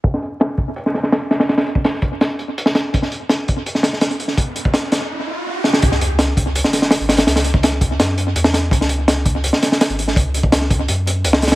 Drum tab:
HH |x---x---x---x---x---x---x-x-x-x-|x-x-x---x---x---x---x---x---x---|x---x---x---x---x---x---x-x-x---|x---x---x---x-------------------|
SD |--o-----o---------o-o-o-o---o-o-|o-o-----o-o-----o---------o-o---|--o-----o---------o-o-o-o-----o-|--------o-o-o---------------o-o-|
BD |o-----------o-------------------|------o-----o-------------------|o-----------o-------------------|o-----o-------------------------|

HH |x---x---x---x---x---x---x-x-x-x-|x-x-x---x---x---x---x---x---x---|x---x---x---x---x---x---x-x-x---|x---x---x---x---x---x---x---xxx-|
SD |--o-----o---------o-o-o-o---o-o-|o-o-----o-o-----o---------o-o---|--o-----o---------o-o-o-o-----o-|--------o-o---------------o-ooo-|
BD |o-----------o-------------------|------o-----o-------------------|o-----------o-------------------|o-----o-----o-------------------|